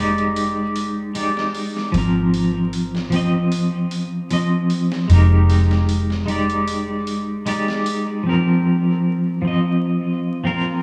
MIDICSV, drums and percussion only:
0, 0, Header, 1, 2, 480
1, 0, Start_track
1, 0, Tempo, 789474
1, 1179, Time_signature, 4, 2, 24, 8
1, 6582, End_track
2, 0, Start_track
2, 0, Title_t, "Drums"
2, 110, Note_on_c, 9, 42, 38
2, 171, Note_off_c, 9, 42, 0
2, 221, Note_on_c, 9, 46, 72
2, 282, Note_off_c, 9, 46, 0
2, 460, Note_on_c, 9, 46, 60
2, 521, Note_off_c, 9, 46, 0
2, 700, Note_on_c, 9, 46, 73
2, 761, Note_off_c, 9, 46, 0
2, 833, Note_on_c, 9, 38, 38
2, 894, Note_off_c, 9, 38, 0
2, 940, Note_on_c, 9, 46, 63
2, 1000, Note_off_c, 9, 46, 0
2, 1072, Note_on_c, 9, 38, 34
2, 1133, Note_off_c, 9, 38, 0
2, 1180, Note_on_c, 9, 46, 69
2, 1241, Note_off_c, 9, 46, 0
2, 1421, Note_on_c, 9, 46, 59
2, 1482, Note_off_c, 9, 46, 0
2, 1660, Note_on_c, 9, 46, 70
2, 1721, Note_off_c, 9, 46, 0
2, 1792, Note_on_c, 9, 38, 39
2, 1853, Note_off_c, 9, 38, 0
2, 1898, Note_on_c, 9, 46, 62
2, 1959, Note_off_c, 9, 46, 0
2, 2138, Note_on_c, 9, 46, 70
2, 2199, Note_off_c, 9, 46, 0
2, 2378, Note_on_c, 9, 46, 61
2, 2439, Note_off_c, 9, 46, 0
2, 2618, Note_on_c, 9, 46, 70
2, 2678, Note_off_c, 9, 46, 0
2, 2857, Note_on_c, 9, 46, 57
2, 2918, Note_off_c, 9, 46, 0
2, 2990, Note_on_c, 9, 38, 45
2, 3051, Note_off_c, 9, 38, 0
2, 3099, Note_on_c, 9, 46, 79
2, 3160, Note_off_c, 9, 46, 0
2, 3341, Note_on_c, 9, 46, 61
2, 3344, Note_on_c, 9, 38, 32
2, 3402, Note_off_c, 9, 46, 0
2, 3405, Note_off_c, 9, 38, 0
2, 3472, Note_on_c, 9, 38, 44
2, 3533, Note_off_c, 9, 38, 0
2, 3579, Note_on_c, 9, 46, 74
2, 3640, Note_off_c, 9, 46, 0
2, 3711, Note_on_c, 9, 38, 35
2, 3771, Note_off_c, 9, 38, 0
2, 3820, Note_on_c, 9, 46, 60
2, 3881, Note_off_c, 9, 46, 0
2, 3950, Note_on_c, 9, 42, 39
2, 4011, Note_off_c, 9, 42, 0
2, 4059, Note_on_c, 9, 46, 79
2, 4120, Note_off_c, 9, 46, 0
2, 4299, Note_on_c, 9, 46, 61
2, 4359, Note_off_c, 9, 46, 0
2, 4539, Note_on_c, 9, 46, 73
2, 4600, Note_off_c, 9, 46, 0
2, 4672, Note_on_c, 9, 38, 41
2, 4732, Note_off_c, 9, 38, 0
2, 4779, Note_on_c, 9, 46, 70
2, 4840, Note_off_c, 9, 46, 0
2, 6582, End_track
0, 0, End_of_file